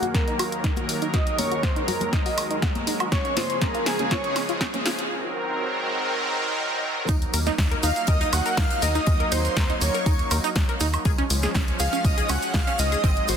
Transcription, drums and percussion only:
0.02 closed hi-hat soft
0.02 high conga medium
0.15 kick loud
0.15 snare soft
0.15 closed hi-hat medium
0.28 closed hi-hat soft
0.39 open hi-hat loud
0.39 high woodblock medium
0.52 closed hi-hat soft
0.64 kick loud
0.64 snare medium
0.64 closed hi-hat medium
0.77 closed hi-hat soft
0.77 high conga medium
0.89 open hi-hat loud
1.02 closed hi-hat soft
1.14 kick loud
1.14 snare medium
1.14 closed hi-hat medium
1.27 closed hi-hat soft
1.38 open hi-hat loud
1.38 high conga medium
1.52 closed hi-hat soft
1.63 kick loud
1.63 snare medium
1.63 closed hi-hat medium
1.76 closed hi-hat soft
1.88 open hi-hat loud
1.88 low conga medium
2.01 closed hi-hat soft
2.01 high conga medium
2.01 low conga medium
2.13 kick loud
2.13 snare medium
2.13 closed hi-hat medium
2.26 open hi-hat medium
2.38 open hi-hat loud
2.38 high woodblock medium
2.51 closed hi-hat soft
2.62 kick loud
2.62 snare medium
2.62 closed hi-hat medium
2.75 closed hi-hat soft
2.75 high conga medium
2.87 open hi-hat loud
3.00 closed hi-hat soft
3.00 high woodblock medium
3.12 kick loud
3.12 snare medium
3.12 closed hi-hat medium
3.25 closed hi-hat soft
3.37 snare medium
3.37 open hi-hat loud
3.37 high conga medium
3.50 closed hi-hat soft
3.62 kick loud
3.62 snare medium
3.62 closed hi-hat medium
3.75 closed hi-hat soft
3.86 snare medium
3.86 open hi-hat loud
3.99 closed hi-hat soft
3.99 high conga medium
4.11 kick loud
4.11 snare medium
4.11 closed hi-hat medium
4.24 closed hi-hat soft
4.36 snare medium
4.36 open hi-hat loud
4.36 high woodblock medium
4.49 closed hi-hat soft
4.61 kick loud
4.61 snare medium
4.61 closed hi-hat medium
4.74 closed hi-hat soft
4.74 high conga medium
4.86 snare medium
4.86 open hi-hat loud
4.99 closed hi-hat soft
7.08 kick loud
7.08 closed hi-hat medium
7.08 tambourine medium
7.08 shaker soft
7.22 closed hi-hat soft
7.33 open hi-hat loud
7.33 tambourine medium
7.33 shaker medium
7.46 snare soft
7.46 closed hi-hat soft
7.46 shaker soft
7.58 kick loud
7.58 snare loud
7.58 closed hi-hat medium
7.58 tambourine loud
7.58 shaker soft
7.72 closed hi-hat soft
7.83 snare soft
7.83 open hi-hat loud
7.83 tambourine medium
7.83 shaker loud
7.96 closed hi-hat soft
7.96 shaker medium
8.07 kick loud
8.07 closed hi-hat medium
8.07 tambourine medium
8.07 shaker soft
8.21 closed hi-hat soft
8.33 snare soft
8.33 open hi-hat loud
8.33 tambourine medium
8.33 high woodblock medium
8.33 shaker medium
8.46 closed hi-hat soft
8.46 shaker medium
8.57 kick loud
8.57 snare loud
8.57 closed hi-hat medium
8.57 tambourine medium
8.57 shaker soft
8.70 closed hi-hat soft
8.82 open hi-hat loud
8.82 tambourine medium
8.82 shaker medium
8.95 closed hi-hat soft
8.95 shaker soft
9.06 kick loud
9.06 closed hi-hat medium
9.06 tambourine medium
9.06 shaker soft
9.20 closed hi-hat soft
9.32 open hi-hat loud
9.32 tambourine medium
9.32 shaker loud
9.45 closed hi-hat soft
9.45 shaker soft
9.57 kick loud
9.57 snare loud
9.57 closed hi-hat medium
9.57 tambourine medium
9.57 shaker soft
9.70 closed hi-hat soft
9.81 open hi-hat loud
9.81 tambourine medium
9.81 shaker loud
9.94 closed hi-hat soft
9.94 shaker medium
10.06 kick loud
10.06 closed hi-hat medium
10.06 tambourine medium
10.06 shaker soft
10.19 closed hi-hat soft
10.31 open hi-hat loud
10.31 tambourine medium
10.31 high woodblock medium
10.31 shaker loud
10.44 closed hi-hat soft
10.44 shaker medium
10.56 kick loud
10.56 snare loud
10.56 closed hi-hat medium
10.56 tambourine medium
10.56 shaker soft
10.69 closed hi-hat soft
10.80 open hi-hat loud
10.80 tambourine medium
10.80 shaker medium
10.93 closed hi-hat soft
10.93 high woodblock medium
10.93 shaker medium
11.05 kick loud
11.05 closed hi-hat medium
11.05 tambourine medium
11.05 shaker soft
11.18 closed hi-hat soft
11.30 open hi-hat loud
11.30 tambourine medium
11.30 shaker medium
11.42 snare soft
11.42 closed hi-hat soft
11.42 shaker medium
11.55 kick loud
11.55 snare loud
11.55 closed hi-hat medium
11.55 tambourine medium
11.55 shaker soft
11.68 closed hi-hat soft
11.80 snare medium
11.80 open hi-hat loud
11.80 tambourine medium
11.80 shaker loud
11.93 closed hi-hat soft
11.93 shaker medium
12.05 kick loud
12.05 closed hi-hat medium
12.05 tambourine medium
12.05 shaker soft
12.18 closed hi-hat soft
12.29 snare medium
12.29 open hi-hat loud
12.29 tambourine medium
12.29 high woodblock medium
12.29 shaker medium
12.42 closed hi-hat soft
12.42 shaker medium
12.54 kick loud
12.54 snare loud
12.54 closed hi-hat medium
12.54 tambourine medium
12.54 shaker soft
12.67 closed hi-hat soft
12.79 open hi-hat loud
12.79 tambourine medium
12.79 shaker medium
12.92 closed hi-hat soft
12.92 shaker medium
13.04 kick loud
13.04 closed hi-hat medium
13.04 tambourine medium
13.04 shaker soft
13.17 closed hi-hat soft
13.28 open hi-hat loud
13.28 tambourine medium
13.28 shaker medium

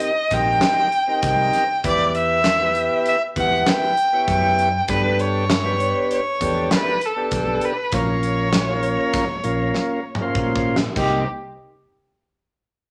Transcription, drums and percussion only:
0.00 closed hi-hat medium
0.31 kick medium
0.31 closed hi-hat medium
0.61 snare loud
0.61 closed hi-hat medium
0.92 closed hi-hat medium
1.22 kick medium
1.22 closed hi-hat medium
1.53 snare soft
1.53 closed hi-hat medium
1.84 kick medium
1.84 closed hi-hat medium
2.15 closed hi-hat medium
2.44 snare medium
2.44 closed hi-hat medium
2.75 closed hi-hat medium
3.05 closed hi-hat medium
3.36 kick medium
3.36 closed hi-hat soft
3.67 snare loud
3.67 closed hi-hat medium
3.97 closed hi-hat medium
4.28 kick medium
4.28 closed hi-hat medium
4.59 closed hi-hat medium
4.88 kick medium
4.88 closed hi-hat medium
5.19 closed hi-hat medium
5.50 snare medium
5.50 closed hi-hat medium
5.80 closed hi-hat medium
6.11 closed hi-hat medium
6.41 kick medium
6.41 closed hi-hat medium
6.71 snare loud
6.71 closed hi-hat medium
7.01 closed hi-hat medium
7.31 kick medium
7.31 closed hi-hat medium
7.61 closed hi-hat medium
7.92 kick medium
7.92 closed hi-hat medium
8.23 closed hi-hat medium
8.53 snare medium
8.53 closed hi-hat medium
8.83 closed hi-hat medium
9.13 kick loud
9.13 snare soft
9.13 closed hi-hat medium
9.44 closed hi-hat medium
9.74 snare medium
10.15 mid tom medium
10.35 kick medium
10.56 kick medium
10.76 snare medium
10.96 kick medium
10.96 crash medium

